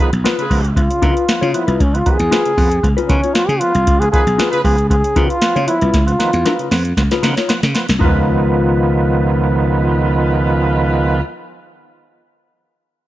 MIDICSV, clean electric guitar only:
0, 0, Header, 1, 2, 480
1, 0, Start_track
1, 0, Tempo, 517241
1, 1673, Time_signature, 4, 2, 24, 8
1, 12135, End_track
2, 0, Start_track
2, 0, Title_t, "Clean electric guitar"
2, 0, Program_c, 0, 27
2, 227, Note_on_c, 0, 63, 80
2, 232, Note_on_c, 0, 65, 88
2, 237, Note_on_c, 0, 71, 91
2, 395, Note_off_c, 0, 63, 0
2, 398, Note_off_c, 0, 65, 0
2, 400, Note_off_c, 0, 71, 0
2, 945, Note_on_c, 0, 63, 75
2, 952, Note_on_c, 0, 65, 81
2, 959, Note_on_c, 0, 71, 87
2, 1138, Note_off_c, 0, 63, 0
2, 1142, Note_off_c, 0, 65, 0
2, 1145, Note_off_c, 0, 71, 0
2, 1312, Note_on_c, 0, 73, 75
2, 1318, Note_on_c, 0, 65, 66
2, 1325, Note_on_c, 0, 63, 70
2, 1472, Note_off_c, 0, 73, 0
2, 1475, Note_off_c, 0, 65, 0
2, 1478, Note_off_c, 0, 63, 0
2, 1550, Note_on_c, 0, 71, 64
2, 1559, Note_on_c, 0, 65, 55
2, 1564, Note_on_c, 0, 63, 55
2, 1674, Note_off_c, 0, 71, 0
2, 1678, Note_off_c, 0, 65, 0
2, 1681, Note_off_c, 0, 63, 0
2, 2147, Note_on_c, 0, 63, 80
2, 2156, Note_on_c, 0, 65, 95
2, 2162, Note_on_c, 0, 71, 90
2, 2315, Note_off_c, 0, 63, 0
2, 2319, Note_off_c, 0, 65, 0
2, 2323, Note_off_c, 0, 71, 0
2, 2754, Note_on_c, 0, 71, 79
2, 2763, Note_on_c, 0, 65, 80
2, 2768, Note_on_c, 0, 63, 72
2, 2913, Note_off_c, 0, 71, 0
2, 2917, Note_off_c, 0, 65, 0
2, 2920, Note_off_c, 0, 63, 0
2, 2997, Note_on_c, 0, 73, 72
2, 3005, Note_on_c, 0, 65, 63
2, 3013, Note_on_c, 0, 63, 56
2, 3117, Note_off_c, 0, 73, 0
2, 3121, Note_off_c, 0, 65, 0
2, 3125, Note_off_c, 0, 63, 0
2, 4068, Note_on_c, 0, 63, 77
2, 4075, Note_on_c, 0, 65, 93
2, 4080, Note_on_c, 0, 71, 99
2, 4236, Note_off_c, 0, 63, 0
2, 4239, Note_off_c, 0, 65, 0
2, 4242, Note_off_c, 0, 71, 0
2, 4788, Note_on_c, 0, 63, 75
2, 4795, Note_on_c, 0, 65, 98
2, 4803, Note_on_c, 0, 71, 106
2, 4956, Note_off_c, 0, 63, 0
2, 4959, Note_off_c, 0, 65, 0
2, 4963, Note_off_c, 0, 71, 0
2, 5157, Note_on_c, 0, 73, 85
2, 5161, Note_on_c, 0, 65, 69
2, 5169, Note_on_c, 0, 63, 63
2, 5314, Note_off_c, 0, 73, 0
2, 5317, Note_off_c, 0, 65, 0
2, 5320, Note_off_c, 0, 63, 0
2, 5397, Note_on_c, 0, 71, 49
2, 5404, Note_on_c, 0, 65, 54
2, 5412, Note_on_c, 0, 63, 44
2, 5517, Note_off_c, 0, 71, 0
2, 5521, Note_off_c, 0, 65, 0
2, 5525, Note_off_c, 0, 63, 0
2, 5994, Note_on_c, 0, 63, 81
2, 6000, Note_on_c, 0, 65, 85
2, 6004, Note_on_c, 0, 71, 98
2, 6183, Note_off_c, 0, 63, 0
2, 6186, Note_off_c, 0, 65, 0
2, 6188, Note_off_c, 0, 71, 0
2, 6603, Note_on_c, 0, 71, 79
2, 6608, Note_on_c, 0, 65, 82
2, 6613, Note_on_c, 0, 63, 75
2, 6758, Note_off_c, 0, 71, 0
2, 6760, Note_off_c, 0, 65, 0
2, 6763, Note_off_c, 0, 63, 0
2, 6834, Note_on_c, 0, 73, 71
2, 6843, Note_on_c, 0, 65, 55
2, 6847, Note_on_c, 0, 63, 55
2, 6956, Note_off_c, 0, 73, 0
2, 6960, Note_off_c, 0, 65, 0
2, 6963, Note_off_c, 0, 63, 0
2, 7417, Note_on_c, 0, 63, 74
2, 7443, Note_on_c, 0, 65, 82
2, 7465, Note_on_c, 0, 71, 95
2, 10665, Note_off_c, 0, 63, 0
2, 10691, Note_off_c, 0, 65, 0
2, 10713, Note_off_c, 0, 71, 0
2, 12135, End_track
0, 0, End_of_file